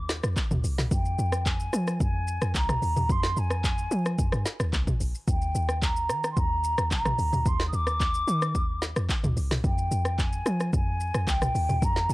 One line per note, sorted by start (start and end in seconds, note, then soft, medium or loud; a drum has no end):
0.00 0.21 D#2 loud
0.00 0.10 D6 loud
0.09 snare medium
0.09 shaker medium
0.23 0.36 F2 medium
0.23 cross-stick loud
0.23 shaker medium
0.37 kick loud
0.37 clap loud
0.37 shaker medium
0.51 0.63 D2 medium
0.51 mid tom medium
0.51 shaker medium
0.64 0.90 C2 medium
0.64 open hi-hat medium
0.64 shaker medium
0.78 snare medium
0.78 mid tom medium
0.78 shaker medium
0.91 1.17 F2 loud
0.91 1.49 G5 medium
0.91 kick loud
0.91 shaker medium
1.05 shaker soft
1.19 1.70 F2 loud
1.19 shaker medium
1.32 cross-stick loud
1.32 shaker medium
1.46 2.01 G#5 medium
1.46 kick loud
1.46 clap loud
1.46 shaker medium
1.60 shaker medium
1.73 1.99 F3 loud
1.73 cross-stick medium
1.73 shaker loud
1.87 cross-stick medium
1.87 shaker medium
2.00 2.39 F2 loud
2.00 2.52 G#5 loud
2.00 kick loud
2.00 shaker medium
2.28 shaker medium
2.42 2.54 F2 medium
2.42 cross-stick loud
2.42 shaker medium
2.55 2.80 C2 medium
2.55 3.13 A#5 loud
2.55 kick medium
2.55 clap medium
2.55 shaker medium
2.69 cross-stick loud
2.69 mid tom medium
2.69 shaker medium
2.82 2.95 D#2 medium
2.82 open hi-hat medium
2.82 shaker medium
2.96 3.09 D#2 medium
2.96 mid tom medium
2.96 shaker medium
3.09 3.35 F2 loud
3.09 3.40 C6 loud
3.09 kick loud
3.09 shaker medium
3.23 snare medium
3.23 shaker soft
3.37 3.88 F2 loud
3.37 4.47 G#5 loud
3.37 shaker medium
3.50 cross-stick loud
3.50 shaker medium
3.64 kick loud
3.64 clap loud
3.64 shaker medium
3.78 shaker medium
3.91 4.17 F3 loud
3.91 shaker medium
4.06 cross-stick medium
4.06 shaker medium
4.19 4.32 F2 medium
4.19 kick loud
4.19 shaker medium
4.32 4.45 G2 medium
4.32 cross-stick loud
4.32 shaker soft
4.46 snare medium
4.46 shaker medium
4.60 4.72 D#2 medium
4.60 cross-stick loud
4.60 shaker medium
4.73 4.86 C2 loud
4.73 kick medium
4.73 clap loud
4.73 shaker medium
4.87 kick medium
4.87 mid tom medium
4.87 shaker medium
5.00 5.14 A#1 medium
5.00 open hi-hat medium
5.00 shaker medium
5.15 shaker medium
5.28 5.53 D#2 loud
5.28 5.85 G5 medium
5.28 kick loud
5.28 shaker medium
5.42 shaker soft
5.55 6.11 D#2 loud
5.55 shaker medium
5.69 cross-stick loud
5.69 shaker medium
5.82 6.31 A#5 medium
5.82 kick loud
5.82 clap loud
5.82 shaker medium
5.96 shaker medium
6.09 6.35 D#3 loud
6.09 cross-stick medium
6.09 shaker loud
6.24 cross-stick loud
6.24 shaker medium
6.31 6.39 C6 medium
6.37 6.76 D#2 loud
6.37 6.92 A#5 loud
6.37 kick loud
6.37 shaker medium
6.64 shaker medium
6.78 6.90 D#2 medium
6.78 cross-stick loud
6.78 shaker medium
6.91 7.17 A#1 loud
6.91 7.49 A#5 loud
6.91 kick loud
6.91 clap loud
6.91 shaker medium
7.05 cross-stick loud
7.05 mid tom medium
7.05 shaker medium
7.18 7.32 D2 loud
7.18 open hi-hat medium
7.18 shaker medium
7.33 7.45 D2 medium
7.33 mid tom medium
7.33 shaker medium
7.46 7.71 D#2 loud
7.46 7.67 C6 loud
7.46 kick loud
7.46 shaker medium
7.60 snare medium
7.60 shaker soft
7.68 7.76 D#6 medium
7.73 8.24 D#2 loud
7.73 8.83 D6 loud
7.73 shaker medium
7.87 cross-stick loud
7.87 shaker medium
8.00 kick loud
8.00 clap loud
8.00 shaker medium
8.14 shaker medium
8.28 8.56 D#3 loud
8.28 shaker loud
8.42 cross-stick loud
8.42 shaker medium
8.55 8.94 D#2 loud
8.55 kick loud
8.55 shaker medium
8.82 snare medium
8.82 shaker medium
8.96 9.09 F2 medium
8.96 cross-stick loud
8.96 shaker medium
9.09 kick medium
9.09 clap loud
9.09 shaker medium
9.24 9.36 D2 medium
9.24 mid tom medium
9.24 shaker medium
9.37 9.62 C2 medium
9.37 open hi-hat medium
9.37 shaker medium
9.51 snare medium
9.51 mid tom medium
9.51 shaker medium
9.64 9.90 F2 loud
9.64 10.21 G5 medium
9.64 kick loud
9.64 shaker medium
9.78 shaker soft
9.91 10.42 F2 loud
9.91 shaker medium
10.05 cross-stick loud
10.05 shaker medium
10.19 10.74 G#5 loud
10.19 kick loud
10.19 clap loud
10.19 shaker medium
10.33 shaker medium
10.46 10.71 F3 loud
10.46 cross-stick loud
10.46 shaker loud
10.60 cross-stick medium
10.60 shaker medium
10.73 11.12 F2 loud
10.73 11.31 G#5 loud
10.73 kick loud
10.73 shaker medium
11.00 shaker medium
11.14 11.27 F2 loud
11.14 cross-stick loud
11.14 shaker medium
11.27 11.53 C2 loud
11.27 11.85 G5 loud
11.27 kick loud
11.27 clap loud
11.27 shaker medium
11.42 cross-stick loud
11.42 mid tom medium
11.42 shaker medium
11.55 11.68 D#2 loud
11.55 open hi-hat medium
11.55 shaker medium
11.69 11.81 D#2 medium
11.69 mid tom medium
11.69 shaker medium
11.82 12.08 F2 loud
11.82 12.12 A#5 loud
11.82 kick loud
11.82 shaker medium
11.96 snare medium
11.96 shaker soft
12.09 12.14 F2 loud
12.09 12.14 G#5 loud
12.09 shaker medium